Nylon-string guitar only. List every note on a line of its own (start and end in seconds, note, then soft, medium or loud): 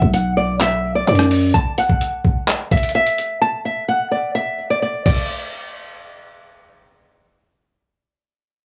0.14 0.31 F#5 medium
0.37 0.55 D5 medium
0.61 0.94 E5 medium
0.95 1.04 D5 medium
1.08 1.52 D5 medium
1.54 1.72 A5 loud
1.78 2.68 F#5 medium
2.72 2.89 E5 medium
2.95 3.39 E5 medium
3.42 3.59 A5 medium
3.65 3.83 E5 medium
3.88 4.06 F#5 medium
4.11 4.29 D5 medium
4.35 4.68 E5 medium
4.70 4.79 D5 medium
4.82 5.04 D5 medium
5.06 6.66 D5 medium